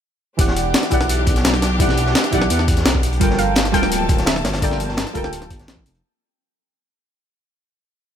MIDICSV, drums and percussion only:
0, 0, Header, 1, 2, 480
1, 0, Start_track
1, 0, Key_signature, 1, "minor"
1, 0, Tempo, 352941
1, 528, Time_signature, 4, 2, 24, 8
1, 11087, End_track
2, 0, Start_track
2, 0, Title_t, "Drums"
2, 528, Note_on_c, 9, 42, 86
2, 529, Note_on_c, 9, 36, 118
2, 648, Note_on_c, 9, 38, 55
2, 664, Note_off_c, 9, 42, 0
2, 665, Note_off_c, 9, 36, 0
2, 766, Note_on_c, 9, 42, 68
2, 769, Note_off_c, 9, 42, 0
2, 769, Note_on_c, 9, 42, 70
2, 784, Note_off_c, 9, 38, 0
2, 905, Note_off_c, 9, 42, 0
2, 1005, Note_on_c, 9, 42, 87
2, 1010, Note_off_c, 9, 42, 0
2, 1010, Note_on_c, 9, 38, 121
2, 1010, Note_on_c, 9, 42, 99
2, 1012, Note_off_c, 9, 38, 0
2, 1012, Note_on_c, 9, 38, 122
2, 1129, Note_off_c, 9, 42, 0
2, 1129, Note_on_c, 9, 40, 38
2, 1129, Note_on_c, 9, 42, 38
2, 1133, Note_off_c, 9, 38, 0
2, 1133, Note_on_c, 9, 38, 41
2, 1237, Note_off_c, 9, 42, 0
2, 1237, Note_on_c, 9, 42, 68
2, 1247, Note_off_c, 9, 42, 0
2, 1247, Note_on_c, 9, 42, 68
2, 1248, Note_on_c, 9, 36, 62
2, 1265, Note_off_c, 9, 40, 0
2, 1269, Note_off_c, 9, 38, 0
2, 1369, Note_on_c, 9, 40, 52
2, 1373, Note_off_c, 9, 42, 0
2, 1373, Note_on_c, 9, 42, 47
2, 1384, Note_off_c, 9, 36, 0
2, 1488, Note_off_c, 9, 42, 0
2, 1488, Note_on_c, 9, 42, 96
2, 1497, Note_off_c, 9, 42, 0
2, 1497, Note_on_c, 9, 42, 91
2, 1505, Note_off_c, 9, 40, 0
2, 1633, Note_off_c, 9, 42, 0
2, 1722, Note_on_c, 9, 42, 73
2, 1728, Note_off_c, 9, 42, 0
2, 1728, Note_on_c, 9, 36, 107
2, 1728, Note_on_c, 9, 42, 69
2, 1850, Note_off_c, 9, 42, 0
2, 1850, Note_on_c, 9, 42, 41
2, 1852, Note_on_c, 9, 38, 45
2, 1864, Note_off_c, 9, 36, 0
2, 1967, Note_off_c, 9, 42, 0
2, 1967, Note_on_c, 9, 42, 93
2, 1968, Note_off_c, 9, 38, 0
2, 1968, Note_on_c, 9, 38, 112
2, 1970, Note_off_c, 9, 38, 0
2, 1970, Note_off_c, 9, 42, 0
2, 1970, Note_on_c, 9, 38, 116
2, 1970, Note_on_c, 9, 42, 97
2, 2089, Note_off_c, 9, 42, 0
2, 2089, Note_on_c, 9, 40, 49
2, 2089, Note_on_c, 9, 42, 40
2, 2106, Note_off_c, 9, 38, 0
2, 2208, Note_off_c, 9, 40, 0
2, 2208, Note_off_c, 9, 42, 0
2, 2208, Note_on_c, 9, 38, 49
2, 2208, Note_on_c, 9, 40, 38
2, 2208, Note_on_c, 9, 42, 68
2, 2210, Note_off_c, 9, 42, 0
2, 2210, Note_on_c, 9, 42, 76
2, 2344, Note_off_c, 9, 38, 0
2, 2344, Note_off_c, 9, 40, 0
2, 2346, Note_off_c, 9, 42, 0
2, 2447, Note_on_c, 9, 36, 125
2, 2447, Note_on_c, 9, 42, 93
2, 2450, Note_off_c, 9, 42, 0
2, 2450, Note_on_c, 9, 42, 95
2, 2569, Note_on_c, 9, 38, 39
2, 2583, Note_off_c, 9, 36, 0
2, 2586, Note_off_c, 9, 42, 0
2, 2687, Note_on_c, 9, 42, 67
2, 2689, Note_off_c, 9, 42, 0
2, 2689, Note_on_c, 9, 42, 70
2, 2705, Note_off_c, 9, 38, 0
2, 2808, Note_on_c, 9, 38, 46
2, 2825, Note_off_c, 9, 42, 0
2, 2927, Note_off_c, 9, 38, 0
2, 2927, Note_on_c, 9, 38, 124
2, 2927, Note_on_c, 9, 42, 96
2, 2928, Note_off_c, 9, 38, 0
2, 2928, Note_on_c, 9, 38, 112
2, 2931, Note_off_c, 9, 42, 0
2, 2931, Note_on_c, 9, 42, 96
2, 3047, Note_off_c, 9, 42, 0
2, 3047, Note_on_c, 9, 40, 40
2, 3047, Note_on_c, 9, 42, 38
2, 3064, Note_off_c, 9, 38, 0
2, 3163, Note_off_c, 9, 42, 0
2, 3163, Note_on_c, 9, 42, 66
2, 3166, Note_off_c, 9, 42, 0
2, 3166, Note_on_c, 9, 42, 74
2, 3167, Note_on_c, 9, 36, 65
2, 3183, Note_off_c, 9, 40, 0
2, 3285, Note_on_c, 9, 40, 52
2, 3302, Note_off_c, 9, 42, 0
2, 3303, Note_off_c, 9, 36, 0
2, 3403, Note_on_c, 9, 42, 92
2, 3405, Note_off_c, 9, 42, 0
2, 3405, Note_on_c, 9, 42, 90
2, 3421, Note_off_c, 9, 40, 0
2, 3525, Note_on_c, 9, 40, 38
2, 3541, Note_off_c, 9, 42, 0
2, 3645, Note_on_c, 9, 42, 66
2, 3647, Note_on_c, 9, 36, 110
2, 3653, Note_off_c, 9, 42, 0
2, 3653, Note_on_c, 9, 42, 76
2, 3661, Note_off_c, 9, 40, 0
2, 3765, Note_off_c, 9, 42, 0
2, 3765, Note_on_c, 9, 42, 39
2, 3770, Note_on_c, 9, 38, 45
2, 3783, Note_off_c, 9, 36, 0
2, 3884, Note_off_c, 9, 38, 0
2, 3884, Note_off_c, 9, 42, 0
2, 3884, Note_on_c, 9, 38, 125
2, 3884, Note_on_c, 9, 42, 98
2, 3885, Note_off_c, 9, 38, 0
2, 3885, Note_on_c, 9, 38, 120
2, 3888, Note_off_c, 9, 42, 0
2, 3888, Note_on_c, 9, 42, 95
2, 4008, Note_on_c, 9, 36, 68
2, 4021, Note_off_c, 9, 38, 0
2, 4024, Note_off_c, 9, 42, 0
2, 4124, Note_on_c, 9, 42, 69
2, 4126, Note_off_c, 9, 42, 0
2, 4126, Note_on_c, 9, 42, 72
2, 4144, Note_off_c, 9, 36, 0
2, 4252, Note_off_c, 9, 42, 0
2, 4252, Note_on_c, 9, 42, 44
2, 4365, Note_off_c, 9, 42, 0
2, 4365, Note_on_c, 9, 42, 91
2, 4366, Note_off_c, 9, 42, 0
2, 4366, Note_on_c, 9, 42, 91
2, 4367, Note_on_c, 9, 36, 127
2, 4495, Note_on_c, 9, 38, 52
2, 4502, Note_off_c, 9, 42, 0
2, 4503, Note_off_c, 9, 36, 0
2, 4606, Note_on_c, 9, 42, 65
2, 4613, Note_off_c, 9, 42, 0
2, 4613, Note_on_c, 9, 42, 66
2, 4631, Note_off_c, 9, 38, 0
2, 4749, Note_off_c, 9, 42, 0
2, 4836, Note_on_c, 9, 42, 84
2, 4842, Note_on_c, 9, 38, 114
2, 4846, Note_off_c, 9, 38, 0
2, 4846, Note_off_c, 9, 42, 0
2, 4846, Note_on_c, 9, 38, 127
2, 4846, Note_on_c, 9, 42, 93
2, 4966, Note_off_c, 9, 38, 0
2, 4966, Note_on_c, 9, 38, 43
2, 4968, Note_off_c, 9, 42, 0
2, 4968, Note_on_c, 9, 40, 38
2, 4968, Note_on_c, 9, 42, 37
2, 5086, Note_on_c, 9, 36, 64
2, 5087, Note_off_c, 9, 42, 0
2, 5087, Note_on_c, 9, 42, 63
2, 5088, Note_off_c, 9, 42, 0
2, 5088, Note_on_c, 9, 42, 71
2, 5102, Note_off_c, 9, 38, 0
2, 5104, Note_off_c, 9, 40, 0
2, 5203, Note_off_c, 9, 42, 0
2, 5203, Note_on_c, 9, 42, 47
2, 5209, Note_on_c, 9, 40, 51
2, 5222, Note_off_c, 9, 36, 0
2, 5327, Note_off_c, 9, 42, 0
2, 5327, Note_on_c, 9, 42, 92
2, 5331, Note_off_c, 9, 42, 0
2, 5331, Note_on_c, 9, 42, 94
2, 5345, Note_off_c, 9, 40, 0
2, 5467, Note_off_c, 9, 42, 0
2, 5561, Note_on_c, 9, 42, 72
2, 5566, Note_on_c, 9, 36, 117
2, 5567, Note_off_c, 9, 42, 0
2, 5567, Note_on_c, 9, 42, 65
2, 5690, Note_on_c, 9, 38, 46
2, 5691, Note_off_c, 9, 42, 0
2, 5691, Note_on_c, 9, 42, 37
2, 5702, Note_off_c, 9, 36, 0
2, 5799, Note_off_c, 9, 38, 0
2, 5799, Note_on_c, 9, 38, 127
2, 5802, Note_off_c, 9, 42, 0
2, 5802, Note_on_c, 9, 42, 83
2, 5809, Note_off_c, 9, 38, 0
2, 5809, Note_off_c, 9, 42, 0
2, 5809, Note_on_c, 9, 38, 126
2, 5809, Note_on_c, 9, 42, 94
2, 5932, Note_on_c, 9, 40, 50
2, 5933, Note_off_c, 9, 42, 0
2, 5933, Note_on_c, 9, 42, 45
2, 5945, Note_off_c, 9, 38, 0
2, 6046, Note_on_c, 9, 38, 100
2, 6049, Note_off_c, 9, 40, 0
2, 6049, Note_off_c, 9, 42, 0
2, 6049, Note_on_c, 9, 40, 37
2, 6049, Note_on_c, 9, 42, 66
2, 6053, Note_off_c, 9, 42, 0
2, 6053, Note_on_c, 9, 42, 75
2, 6166, Note_off_c, 9, 38, 0
2, 6166, Note_off_c, 9, 42, 0
2, 6166, Note_on_c, 9, 38, 100
2, 6166, Note_on_c, 9, 42, 74
2, 6185, Note_off_c, 9, 40, 0
2, 6286, Note_on_c, 9, 36, 127
2, 6288, Note_off_c, 9, 42, 0
2, 6288, Note_on_c, 9, 42, 89
2, 6302, Note_off_c, 9, 38, 0
2, 6410, Note_on_c, 9, 38, 38
2, 6422, Note_off_c, 9, 36, 0
2, 6424, Note_off_c, 9, 42, 0
2, 6529, Note_on_c, 9, 42, 68
2, 6546, Note_off_c, 9, 38, 0
2, 6648, Note_on_c, 9, 38, 44
2, 6665, Note_off_c, 9, 42, 0
2, 6762, Note_off_c, 9, 38, 0
2, 6762, Note_on_c, 9, 38, 120
2, 6764, Note_on_c, 9, 42, 84
2, 6770, Note_off_c, 9, 38, 0
2, 6770, Note_off_c, 9, 42, 0
2, 6770, Note_on_c, 9, 38, 126
2, 6770, Note_on_c, 9, 42, 86
2, 6892, Note_off_c, 9, 42, 0
2, 6892, Note_on_c, 9, 40, 36
2, 6892, Note_on_c, 9, 42, 36
2, 6906, Note_off_c, 9, 38, 0
2, 7001, Note_off_c, 9, 42, 0
2, 7001, Note_on_c, 9, 42, 65
2, 7007, Note_on_c, 9, 36, 64
2, 7010, Note_off_c, 9, 42, 0
2, 7010, Note_on_c, 9, 42, 61
2, 7028, Note_off_c, 9, 40, 0
2, 7130, Note_on_c, 9, 40, 50
2, 7143, Note_off_c, 9, 36, 0
2, 7146, Note_off_c, 9, 42, 0
2, 7245, Note_on_c, 9, 42, 89
2, 7250, Note_off_c, 9, 42, 0
2, 7250, Note_on_c, 9, 42, 93
2, 7266, Note_off_c, 9, 40, 0
2, 7369, Note_off_c, 9, 42, 0
2, 7369, Note_on_c, 9, 40, 37
2, 7369, Note_on_c, 9, 42, 37
2, 7487, Note_off_c, 9, 42, 0
2, 7487, Note_on_c, 9, 42, 64
2, 7488, Note_on_c, 9, 36, 109
2, 7489, Note_off_c, 9, 42, 0
2, 7489, Note_on_c, 9, 42, 75
2, 7505, Note_off_c, 9, 40, 0
2, 7609, Note_off_c, 9, 42, 0
2, 7609, Note_on_c, 9, 42, 36
2, 7613, Note_on_c, 9, 38, 39
2, 7624, Note_off_c, 9, 36, 0
2, 7728, Note_off_c, 9, 38, 0
2, 7728, Note_off_c, 9, 42, 0
2, 7728, Note_on_c, 9, 38, 127
2, 7728, Note_on_c, 9, 42, 90
2, 7729, Note_off_c, 9, 38, 0
2, 7729, Note_on_c, 9, 38, 127
2, 7848, Note_on_c, 9, 36, 65
2, 7864, Note_off_c, 9, 42, 0
2, 7865, Note_off_c, 9, 38, 0
2, 7969, Note_on_c, 9, 42, 63
2, 7974, Note_off_c, 9, 42, 0
2, 7974, Note_on_c, 9, 42, 68
2, 7984, Note_off_c, 9, 36, 0
2, 8089, Note_off_c, 9, 42, 0
2, 8089, Note_on_c, 9, 42, 47
2, 8225, Note_off_c, 9, 42, 0
2, 11087, End_track
0, 0, End_of_file